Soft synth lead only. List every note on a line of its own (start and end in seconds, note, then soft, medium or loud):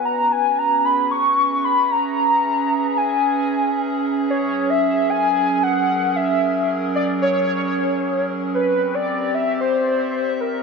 0.05 0.33 A#5 loud
0.32 0.60 G#5 loud
0.58 0.87 A#5 loud
0.85 1.11 B5 loud
1.11 1.66 C#6 loud
1.65 1.93 B5 loud
1.91 2.99 A#5 loud
2.97 4.04 G#5 loud
4.30 4.71 C#5 loud
4.70 5.11 E5 loud
5.10 5.65 G#5 loud
5.63 6.18 F#5 loud
6.16 6.69 E5 loud
6.96 7.08 D5 loud
7.22 8.24 C#5 loud
8.55 8.96 B4 loud
8.95 9.36 D5 loud
9.34 9.60 E5 loud
9.61 10.42 C5 loud
10.41 10.63 A#4 loud